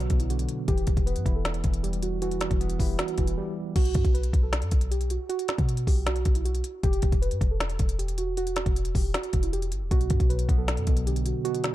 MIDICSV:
0, 0, Header, 1, 5, 480
1, 0, Start_track
1, 0, Key_signature, 2, "minor"
1, 0, Tempo, 384615
1, 850, Time_signature, 4, 2, 24, 8
1, 14660, End_track
2, 0, Start_track
2, 0, Title_t, "Synth keys"
2, 0, Program_c, 0, 88
2, 0, Note_on_c, 0, 66, 93
2, 225, Note_off_c, 0, 66, 0
2, 251, Note_on_c, 0, 64, 74
2, 356, Note_off_c, 0, 64, 0
2, 372, Note_on_c, 0, 66, 89
2, 582, Note_off_c, 0, 66, 0
2, 849, Note_on_c, 0, 67, 115
2, 1300, Note_off_c, 0, 67, 0
2, 1326, Note_on_c, 0, 71, 90
2, 1666, Note_off_c, 0, 71, 0
2, 1691, Note_on_c, 0, 69, 80
2, 2255, Note_off_c, 0, 69, 0
2, 2288, Note_on_c, 0, 67, 80
2, 2499, Note_off_c, 0, 67, 0
2, 2530, Note_on_c, 0, 66, 85
2, 2740, Note_off_c, 0, 66, 0
2, 2770, Note_on_c, 0, 66, 107
2, 3446, Note_off_c, 0, 66, 0
2, 3488, Note_on_c, 0, 67, 79
2, 3699, Note_off_c, 0, 67, 0
2, 3729, Note_on_c, 0, 66, 100
2, 4068, Note_off_c, 0, 66, 0
2, 4089, Note_on_c, 0, 64, 73
2, 4195, Note_off_c, 0, 64, 0
2, 4211, Note_on_c, 0, 67, 89
2, 4421, Note_off_c, 0, 67, 0
2, 4689, Note_on_c, 0, 66, 112
2, 5141, Note_off_c, 0, 66, 0
2, 5167, Note_on_c, 0, 71, 94
2, 5507, Note_off_c, 0, 71, 0
2, 5527, Note_on_c, 0, 69, 83
2, 6092, Note_off_c, 0, 69, 0
2, 6130, Note_on_c, 0, 67, 82
2, 6340, Note_off_c, 0, 67, 0
2, 6374, Note_on_c, 0, 66, 80
2, 6583, Note_off_c, 0, 66, 0
2, 6605, Note_on_c, 0, 66, 123
2, 7284, Note_off_c, 0, 66, 0
2, 7329, Note_on_c, 0, 67, 85
2, 7540, Note_off_c, 0, 67, 0
2, 7564, Note_on_c, 0, 66, 95
2, 7905, Note_off_c, 0, 66, 0
2, 7931, Note_on_c, 0, 64, 76
2, 8036, Note_off_c, 0, 64, 0
2, 8052, Note_on_c, 0, 66, 92
2, 8262, Note_off_c, 0, 66, 0
2, 8529, Note_on_c, 0, 67, 121
2, 8980, Note_off_c, 0, 67, 0
2, 9007, Note_on_c, 0, 71, 88
2, 9347, Note_off_c, 0, 71, 0
2, 9372, Note_on_c, 0, 69, 84
2, 9935, Note_off_c, 0, 69, 0
2, 9969, Note_on_c, 0, 67, 83
2, 10180, Note_off_c, 0, 67, 0
2, 10212, Note_on_c, 0, 66, 88
2, 10421, Note_off_c, 0, 66, 0
2, 10452, Note_on_c, 0, 66, 108
2, 11127, Note_off_c, 0, 66, 0
2, 11169, Note_on_c, 0, 67, 81
2, 11380, Note_off_c, 0, 67, 0
2, 11410, Note_on_c, 0, 66, 97
2, 11748, Note_off_c, 0, 66, 0
2, 11770, Note_on_c, 0, 64, 74
2, 11875, Note_off_c, 0, 64, 0
2, 11892, Note_on_c, 0, 67, 91
2, 12102, Note_off_c, 0, 67, 0
2, 12369, Note_on_c, 0, 66, 114
2, 12820, Note_off_c, 0, 66, 0
2, 12847, Note_on_c, 0, 71, 92
2, 13187, Note_off_c, 0, 71, 0
2, 13205, Note_on_c, 0, 69, 85
2, 13771, Note_off_c, 0, 69, 0
2, 13810, Note_on_c, 0, 67, 82
2, 14020, Note_off_c, 0, 67, 0
2, 14054, Note_on_c, 0, 66, 83
2, 14263, Note_off_c, 0, 66, 0
2, 14285, Note_on_c, 0, 66, 120
2, 14660, Note_off_c, 0, 66, 0
2, 14660, End_track
3, 0, Start_track
3, 0, Title_t, "Tine electric piano"
3, 0, Program_c, 1, 4
3, 0, Control_c, 1, 64, 127
3, 0, Note_on_c, 1, 47, 89
3, 0, Note_on_c, 1, 50, 78
3, 0, Note_on_c, 1, 54, 96
3, 0, Note_on_c, 1, 59, 87
3, 133, Note_off_c, 1, 47, 0
3, 133, Note_on_c, 1, 47, 80
3, 368, Note_off_c, 1, 50, 0
3, 368, Note_on_c, 1, 50, 86
3, 608, Note_off_c, 1, 54, 0
3, 849, Note_off_c, 1, 50, 0
3, 850, Note_off_c, 1, 59, 0
3, 851, Note_off_c, 1, 47, 0
3, 852, Note_on_c, 1, 52, 90
3, 867, Control_c, 1, 64, 0
3, 1118, Control_c, 1, 64, 127
3, 1328, Note_on_c, 1, 59, 87
3, 1567, Note_on_c, 1, 64, 85
3, 2029, Note_off_c, 1, 52, 0
3, 2044, Note_on_c, 1, 52, 81
3, 2292, Note_on_c, 1, 55, 88
3, 2529, Note_off_c, 1, 59, 0
3, 2752, Note_off_c, 1, 52, 0
3, 2767, Note_on_c, 1, 52, 84
3, 2768, Note_off_c, 1, 64, 0
3, 3251, Note_on_c, 1, 59, 87
3, 3489, Note_on_c, 1, 64, 78
3, 3491, Note_off_c, 1, 55, 0
3, 3951, Note_off_c, 1, 52, 0
3, 3966, Note_on_c, 1, 52, 81
3, 4212, Note_on_c, 1, 55, 90
3, 4450, Note_off_c, 1, 59, 0
3, 4688, Note_off_c, 1, 52, 0
3, 4689, Note_off_c, 1, 64, 0
3, 4690, Note_off_c, 1, 55, 0
3, 4706, Control_c, 1, 64, 0
3, 12369, Note_on_c, 1, 47, 95
3, 12630, Control_c, 1, 64, 127
3, 12848, Note_on_c, 1, 54, 85
3, 13085, Note_on_c, 1, 59, 92
3, 13564, Note_off_c, 1, 47, 0
3, 13579, Note_on_c, 1, 47, 86
3, 13811, Note_on_c, 1, 50, 78
3, 14049, Note_off_c, 1, 54, 0
3, 14275, Note_off_c, 1, 47, 0
3, 14287, Note_off_c, 1, 59, 0
3, 14290, Note_on_c, 1, 47, 97
3, 14660, Note_off_c, 1, 47, 0
3, 14660, Note_off_c, 1, 50, 0
3, 14660, End_track
4, 0, Start_track
4, 0, Title_t, "808-style bass"
4, 0, Program_c, 2, 38
4, 128, Note_on_c, 2, 35, 103
4, 590, Note_off_c, 2, 35, 0
4, 849, Note_on_c, 2, 28, 116
4, 1080, Note_off_c, 2, 28, 0
4, 1090, Note_on_c, 2, 28, 101
4, 1201, Note_off_c, 2, 28, 0
4, 1209, Note_on_c, 2, 28, 106
4, 1449, Note_on_c, 2, 43, 96
4, 1468, Note_off_c, 2, 28, 0
4, 1561, Note_off_c, 2, 43, 0
4, 1568, Note_on_c, 2, 28, 103
4, 2029, Note_off_c, 2, 28, 0
4, 2048, Note_on_c, 2, 28, 106
4, 3086, Note_off_c, 2, 28, 0
4, 3129, Note_on_c, 2, 28, 102
4, 3475, Note_off_c, 2, 28, 0
4, 3488, Note_on_c, 2, 28, 101
4, 3719, Note_off_c, 2, 28, 0
4, 3969, Note_on_c, 2, 28, 106
4, 4199, Note_off_c, 2, 28, 0
4, 4689, Note_on_c, 2, 35, 114
4, 4920, Note_off_c, 2, 35, 0
4, 4930, Note_on_c, 2, 42, 104
4, 5041, Note_off_c, 2, 42, 0
4, 5049, Note_on_c, 2, 35, 104
4, 5395, Note_off_c, 2, 35, 0
4, 5408, Note_on_c, 2, 35, 108
4, 5770, Note_on_c, 2, 42, 105
4, 5789, Note_off_c, 2, 35, 0
4, 5881, Note_off_c, 2, 42, 0
4, 5888, Note_on_c, 2, 35, 107
4, 6465, Note_off_c, 2, 35, 0
4, 6969, Note_on_c, 2, 47, 104
4, 7315, Note_off_c, 2, 47, 0
4, 7328, Note_on_c, 2, 35, 107
4, 7790, Note_off_c, 2, 35, 0
4, 7808, Note_on_c, 2, 35, 104
4, 8270, Note_off_c, 2, 35, 0
4, 8529, Note_on_c, 2, 28, 112
4, 8760, Note_off_c, 2, 28, 0
4, 8770, Note_on_c, 2, 28, 104
4, 8882, Note_off_c, 2, 28, 0
4, 8889, Note_on_c, 2, 28, 109
4, 9130, Note_on_c, 2, 43, 96
4, 9149, Note_off_c, 2, 28, 0
4, 9241, Note_off_c, 2, 43, 0
4, 9249, Note_on_c, 2, 28, 106
4, 9710, Note_off_c, 2, 28, 0
4, 9729, Note_on_c, 2, 28, 106
4, 10766, Note_off_c, 2, 28, 0
4, 10809, Note_on_c, 2, 28, 105
4, 11155, Note_off_c, 2, 28, 0
4, 11169, Note_on_c, 2, 28, 110
4, 11399, Note_off_c, 2, 28, 0
4, 11649, Note_on_c, 2, 28, 109
4, 12130, Note_on_c, 2, 31, 99
4, 12149, Note_off_c, 2, 28, 0
4, 12250, Note_on_c, 2, 28, 100
4, 12268, Note_off_c, 2, 31, 0
4, 12364, Note_off_c, 2, 28, 0
4, 12370, Note_on_c, 2, 35, 114
4, 12600, Note_off_c, 2, 35, 0
4, 12610, Note_on_c, 2, 42, 104
4, 12722, Note_off_c, 2, 42, 0
4, 12729, Note_on_c, 2, 35, 104
4, 13075, Note_off_c, 2, 35, 0
4, 13089, Note_on_c, 2, 35, 111
4, 13450, Note_on_c, 2, 42, 101
4, 13469, Note_off_c, 2, 35, 0
4, 13564, Note_off_c, 2, 42, 0
4, 13569, Note_on_c, 2, 35, 107
4, 14145, Note_off_c, 2, 35, 0
4, 14660, End_track
5, 0, Start_track
5, 0, Title_t, "Drums"
5, 4, Note_on_c, 9, 42, 57
5, 123, Note_off_c, 9, 42, 0
5, 123, Note_on_c, 9, 42, 81
5, 128, Note_on_c, 9, 36, 93
5, 246, Note_off_c, 9, 42, 0
5, 246, Note_on_c, 9, 42, 69
5, 253, Note_off_c, 9, 36, 0
5, 371, Note_off_c, 9, 42, 0
5, 375, Note_on_c, 9, 42, 85
5, 488, Note_off_c, 9, 42, 0
5, 488, Note_on_c, 9, 42, 61
5, 606, Note_off_c, 9, 42, 0
5, 606, Note_on_c, 9, 42, 80
5, 731, Note_off_c, 9, 42, 0
5, 849, Note_on_c, 9, 36, 123
5, 849, Note_on_c, 9, 42, 72
5, 968, Note_off_c, 9, 42, 0
5, 968, Note_on_c, 9, 42, 55
5, 974, Note_off_c, 9, 36, 0
5, 1083, Note_off_c, 9, 42, 0
5, 1083, Note_on_c, 9, 42, 79
5, 1090, Note_on_c, 9, 36, 100
5, 1207, Note_off_c, 9, 42, 0
5, 1209, Note_off_c, 9, 36, 0
5, 1209, Note_on_c, 9, 36, 100
5, 1209, Note_on_c, 9, 42, 51
5, 1333, Note_off_c, 9, 36, 0
5, 1334, Note_off_c, 9, 42, 0
5, 1337, Note_on_c, 9, 42, 70
5, 1444, Note_off_c, 9, 42, 0
5, 1444, Note_on_c, 9, 42, 62
5, 1568, Note_on_c, 9, 36, 93
5, 1569, Note_off_c, 9, 42, 0
5, 1573, Note_on_c, 9, 42, 62
5, 1693, Note_off_c, 9, 36, 0
5, 1698, Note_off_c, 9, 42, 0
5, 1810, Note_on_c, 9, 38, 126
5, 1810, Note_on_c, 9, 42, 86
5, 1924, Note_off_c, 9, 42, 0
5, 1924, Note_on_c, 9, 42, 56
5, 1935, Note_off_c, 9, 38, 0
5, 2043, Note_off_c, 9, 42, 0
5, 2043, Note_on_c, 9, 42, 80
5, 2048, Note_on_c, 9, 36, 95
5, 2166, Note_off_c, 9, 42, 0
5, 2166, Note_on_c, 9, 42, 68
5, 2173, Note_off_c, 9, 36, 0
5, 2290, Note_off_c, 9, 42, 0
5, 2296, Note_on_c, 9, 42, 87
5, 2410, Note_off_c, 9, 42, 0
5, 2410, Note_on_c, 9, 42, 59
5, 2527, Note_off_c, 9, 42, 0
5, 2527, Note_on_c, 9, 42, 81
5, 2652, Note_off_c, 9, 42, 0
5, 2769, Note_on_c, 9, 42, 70
5, 2888, Note_off_c, 9, 42, 0
5, 2888, Note_on_c, 9, 42, 53
5, 3003, Note_off_c, 9, 42, 0
5, 3003, Note_on_c, 9, 42, 77
5, 3009, Note_on_c, 9, 38, 90
5, 3127, Note_off_c, 9, 42, 0
5, 3129, Note_on_c, 9, 36, 101
5, 3129, Note_on_c, 9, 42, 52
5, 3134, Note_off_c, 9, 38, 0
5, 3254, Note_off_c, 9, 36, 0
5, 3254, Note_off_c, 9, 42, 0
5, 3257, Note_on_c, 9, 42, 71
5, 3364, Note_off_c, 9, 42, 0
5, 3364, Note_on_c, 9, 42, 65
5, 3488, Note_on_c, 9, 36, 92
5, 3489, Note_off_c, 9, 42, 0
5, 3493, Note_on_c, 9, 46, 92
5, 3613, Note_off_c, 9, 36, 0
5, 3618, Note_off_c, 9, 46, 0
5, 3730, Note_on_c, 9, 38, 127
5, 3730, Note_on_c, 9, 42, 87
5, 3844, Note_off_c, 9, 42, 0
5, 3844, Note_on_c, 9, 42, 53
5, 3854, Note_off_c, 9, 38, 0
5, 3964, Note_off_c, 9, 42, 0
5, 3964, Note_on_c, 9, 42, 77
5, 3969, Note_on_c, 9, 36, 90
5, 4086, Note_off_c, 9, 42, 0
5, 4086, Note_on_c, 9, 42, 72
5, 4093, Note_off_c, 9, 36, 0
5, 4211, Note_off_c, 9, 42, 0
5, 4689, Note_on_c, 9, 36, 123
5, 4689, Note_on_c, 9, 42, 71
5, 4689, Note_on_c, 9, 49, 102
5, 4808, Note_off_c, 9, 42, 0
5, 4808, Note_on_c, 9, 42, 57
5, 4814, Note_off_c, 9, 36, 0
5, 4814, Note_off_c, 9, 49, 0
5, 4922, Note_off_c, 9, 42, 0
5, 4922, Note_on_c, 9, 42, 78
5, 4930, Note_on_c, 9, 36, 103
5, 5047, Note_off_c, 9, 42, 0
5, 5049, Note_off_c, 9, 36, 0
5, 5049, Note_on_c, 9, 36, 106
5, 5049, Note_on_c, 9, 42, 53
5, 5174, Note_off_c, 9, 36, 0
5, 5174, Note_off_c, 9, 42, 0
5, 5177, Note_on_c, 9, 42, 72
5, 5284, Note_off_c, 9, 42, 0
5, 5284, Note_on_c, 9, 42, 67
5, 5408, Note_on_c, 9, 36, 91
5, 5409, Note_off_c, 9, 42, 0
5, 5413, Note_on_c, 9, 42, 63
5, 5533, Note_off_c, 9, 36, 0
5, 5538, Note_off_c, 9, 42, 0
5, 5650, Note_on_c, 9, 38, 127
5, 5650, Note_on_c, 9, 42, 92
5, 5764, Note_off_c, 9, 42, 0
5, 5764, Note_on_c, 9, 42, 57
5, 5774, Note_off_c, 9, 38, 0
5, 5883, Note_off_c, 9, 42, 0
5, 5883, Note_on_c, 9, 42, 83
5, 5888, Note_on_c, 9, 36, 97
5, 6006, Note_off_c, 9, 42, 0
5, 6006, Note_on_c, 9, 42, 73
5, 6013, Note_off_c, 9, 36, 0
5, 6130, Note_off_c, 9, 42, 0
5, 6135, Note_on_c, 9, 42, 87
5, 6249, Note_off_c, 9, 42, 0
5, 6249, Note_on_c, 9, 42, 58
5, 6367, Note_off_c, 9, 42, 0
5, 6367, Note_on_c, 9, 42, 84
5, 6491, Note_off_c, 9, 42, 0
5, 6609, Note_on_c, 9, 42, 73
5, 6728, Note_off_c, 9, 42, 0
5, 6728, Note_on_c, 9, 42, 55
5, 6842, Note_off_c, 9, 42, 0
5, 6842, Note_on_c, 9, 42, 77
5, 6849, Note_on_c, 9, 38, 91
5, 6967, Note_off_c, 9, 42, 0
5, 6969, Note_on_c, 9, 36, 100
5, 6969, Note_on_c, 9, 42, 52
5, 6974, Note_off_c, 9, 38, 0
5, 7094, Note_off_c, 9, 36, 0
5, 7094, Note_off_c, 9, 42, 0
5, 7097, Note_on_c, 9, 42, 73
5, 7203, Note_off_c, 9, 42, 0
5, 7203, Note_on_c, 9, 42, 64
5, 7328, Note_off_c, 9, 42, 0
5, 7328, Note_on_c, 9, 36, 92
5, 7332, Note_on_c, 9, 46, 92
5, 7453, Note_off_c, 9, 36, 0
5, 7457, Note_off_c, 9, 46, 0
5, 7570, Note_on_c, 9, 38, 127
5, 7570, Note_on_c, 9, 42, 91
5, 7684, Note_off_c, 9, 42, 0
5, 7684, Note_on_c, 9, 42, 56
5, 7694, Note_off_c, 9, 38, 0
5, 7803, Note_off_c, 9, 42, 0
5, 7803, Note_on_c, 9, 42, 80
5, 7809, Note_on_c, 9, 36, 96
5, 7926, Note_off_c, 9, 42, 0
5, 7926, Note_on_c, 9, 42, 72
5, 7933, Note_off_c, 9, 36, 0
5, 8051, Note_off_c, 9, 42, 0
5, 8056, Note_on_c, 9, 42, 86
5, 8169, Note_off_c, 9, 42, 0
5, 8169, Note_on_c, 9, 42, 59
5, 8287, Note_off_c, 9, 42, 0
5, 8287, Note_on_c, 9, 42, 80
5, 8412, Note_off_c, 9, 42, 0
5, 8529, Note_on_c, 9, 42, 72
5, 8530, Note_on_c, 9, 36, 125
5, 8649, Note_off_c, 9, 42, 0
5, 8649, Note_on_c, 9, 42, 55
5, 8654, Note_off_c, 9, 36, 0
5, 8763, Note_off_c, 9, 42, 0
5, 8763, Note_on_c, 9, 42, 80
5, 8770, Note_on_c, 9, 36, 105
5, 8888, Note_off_c, 9, 42, 0
5, 8889, Note_off_c, 9, 36, 0
5, 8889, Note_on_c, 9, 36, 103
5, 8890, Note_on_c, 9, 42, 55
5, 9014, Note_off_c, 9, 36, 0
5, 9015, Note_off_c, 9, 42, 0
5, 9017, Note_on_c, 9, 42, 72
5, 9125, Note_off_c, 9, 42, 0
5, 9125, Note_on_c, 9, 42, 63
5, 9249, Note_off_c, 9, 42, 0
5, 9249, Note_on_c, 9, 36, 95
5, 9253, Note_on_c, 9, 42, 65
5, 9373, Note_off_c, 9, 36, 0
5, 9378, Note_off_c, 9, 42, 0
5, 9490, Note_on_c, 9, 38, 127
5, 9490, Note_on_c, 9, 42, 88
5, 9604, Note_off_c, 9, 42, 0
5, 9604, Note_on_c, 9, 42, 56
5, 9615, Note_off_c, 9, 38, 0
5, 9724, Note_off_c, 9, 42, 0
5, 9724, Note_on_c, 9, 42, 82
5, 9729, Note_on_c, 9, 36, 98
5, 9846, Note_off_c, 9, 42, 0
5, 9846, Note_on_c, 9, 42, 73
5, 9854, Note_off_c, 9, 36, 0
5, 9971, Note_off_c, 9, 42, 0
5, 9976, Note_on_c, 9, 42, 90
5, 10089, Note_off_c, 9, 42, 0
5, 10089, Note_on_c, 9, 42, 61
5, 10207, Note_off_c, 9, 42, 0
5, 10207, Note_on_c, 9, 42, 83
5, 10332, Note_off_c, 9, 42, 0
5, 10449, Note_on_c, 9, 42, 75
5, 10568, Note_off_c, 9, 42, 0
5, 10568, Note_on_c, 9, 42, 58
5, 10683, Note_off_c, 9, 42, 0
5, 10683, Note_on_c, 9, 42, 77
5, 10690, Note_on_c, 9, 38, 92
5, 10808, Note_off_c, 9, 42, 0
5, 10809, Note_on_c, 9, 36, 105
5, 10810, Note_on_c, 9, 42, 52
5, 10814, Note_off_c, 9, 38, 0
5, 10934, Note_off_c, 9, 36, 0
5, 10935, Note_off_c, 9, 42, 0
5, 10937, Note_on_c, 9, 42, 75
5, 11045, Note_off_c, 9, 42, 0
5, 11045, Note_on_c, 9, 42, 65
5, 11168, Note_on_c, 9, 36, 94
5, 11169, Note_off_c, 9, 42, 0
5, 11173, Note_on_c, 9, 46, 92
5, 11293, Note_off_c, 9, 36, 0
5, 11298, Note_off_c, 9, 46, 0
5, 11410, Note_on_c, 9, 38, 127
5, 11410, Note_on_c, 9, 42, 89
5, 11524, Note_off_c, 9, 42, 0
5, 11524, Note_on_c, 9, 42, 55
5, 11535, Note_off_c, 9, 38, 0
5, 11644, Note_off_c, 9, 42, 0
5, 11644, Note_on_c, 9, 42, 82
5, 11649, Note_on_c, 9, 36, 95
5, 11767, Note_off_c, 9, 42, 0
5, 11767, Note_on_c, 9, 42, 70
5, 11774, Note_off_c, 9, 36, 0
5, 11891, Note_off_c, 9, 42, 0
5, 11896, Note_on_c, 9, 42, 88
5, 12009, Note_off_c, 9, 42, 0
5, 12009, Note_on_c, 9, 42, 60
5, 12127, Note_off_c, 9, 42, 0
5, 12127, Note_on_c, 9, 42, 82
5, 12252, Note_off_c, 9, 42, 0
5, 12370, Note_on_c, 9, 36, 121
5, 12370, Note_on_c, 9, 42, 73
5, 12489, Note_off_c, 9, 42, 0
5, 12489, Note_on_c, 9, 42, 54
5, 12495, Note_off_c, 9, 36, 0
5, 12603, Note_off_c, 9, 42, 0
5, 12603, Note_on_c, 9, 42, 79
5, 12610, Note_on_c, 9, 36, 107
5, 12728, Note_off_c, 9, 42, 0
5, 12729, Note_off_c, 9, 36, 0
5, 12729, Note_on_c, 9, 36, 100
5, 12730, Note_on_c, 9, 42, 53
5, 12854, Note_off_c, 9, 36, 0
5, 12855, Note_off_c, 9, 42, 0
5, 12858, Note_on_c, 9, 42, 74
5, 12965, Note_off_c, 9, 42, 0
5, 12965, Note_on_c, 9, 42, 65
5, 13089, Note_off_c, 9, 42, 0
5, 13089, Note_on_c, 9, 36, 94
5, 13093, Note_on_c, 9, 42, 65
5, 13214, Note_off_c, 9, 36, 0
5, 13218, Note_off_c, 9, 42, 0
5, 13330, Note_on_c, 9, 38, 125
5, 13330, Note_on_c, 9, 42, 90
5, 13445, Note_off_c, 9, 42, 0
5, 13445, Note_on_c, 9, 42, 58
5, 13455, Note_off_c, 9, 38, 0
5, 13564, Note_off_c, 9, 42, 0
5, 13564, Note_on_c, 9, 42, 83
5, 13569, Note_on_c, 9, 36, 96
5, 13686, Note_off_c, 9, 42, 0
5, 13686, Note_on_c, 9, 42, 72
5, 13694, Note_off_c, 9, 36, 0
5, 13811, Note_off_c, 9, 42, 0
5, 13816, Note_on_c, 9, 42, 87
5, 13930, Note_off_c, 9, 42, 0
5, 13930, Note_on_c, 9, 42, 61
5, 14048, Note_off_c, 9, 42, 0
5, 14048, Note_on_c, 9, 42, 83
5, 14172, Note_off_c, 9, 42, 0
5, 14290, Note_on_c, 9, 42, 73
5, 14408, Note_off_c, 9, 42, 0
5, 14408, Note_on_c, 9, 42, 55
5, 14523, Note_off_c, 9, 42, 0
5, 14523, Note_on_c, 9, 42, 81
5, 14530, Note_on_c, 9, 38, 95
5, 14648, Note_off_c, 9, 42, 0
5, 14655, Note_off_c, 9, 38, 0
5, 14660, End_track
0, 0, End_of_file